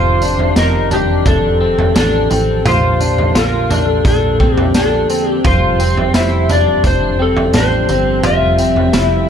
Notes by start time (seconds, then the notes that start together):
Already playing: F1 D#3 F3 C4 F4 G4 C5
0.22 D4, tambourine
0.39 floor tom
0.56 F1 D#4 A#4, snare, tambourine
0.91 D4 G4, floor tom, tambourine
1.26 F1 D4 A4, kick, floor tom, tambourine
1.61 C4
1.79 floor tom
1.96 A1 D4 A4, snare, tambourine
2.31 A1 C4, tambourine
2.65 A#1 D3 A#3 F4 C5, floor tom, tambourine
3.00 D4, tambourine
3.18 floor tom
3.35 A#1 F4 A#4, snare, tambourine
3.70 D4, floor tom, tambourine
3.87 A4
4.05 A#1 D4 A4, kick, floor tom, tambourine
4.40 C4, kick
4.56 G4, floor tom
4.74 D4 A4, snare, tambourine
5.10 C4, tambourine
5.30 G4
5.45 F1 F3 G3 C4 F4 G4 C5, kick, floor tom, tambourine
5.80 C4, tambourine
5.97 floor tom
6.14 F1 E4, snare, tambourine
6.49 D4 D5, floor tom, tambourine
6.84 F1 D4 C5, kick, floor tom, tambourine
7.19 C4 A4
7.37 floor tom
7.53 A1 D4 C5, snare, tambourine
7.89 G1 C4, tambourine
8.23 F1 F4 G4 E5, floor tom, tambourine
8.58 C4, tambourine
8.76 floor tom
8.93 F1 E4, snare, tambourine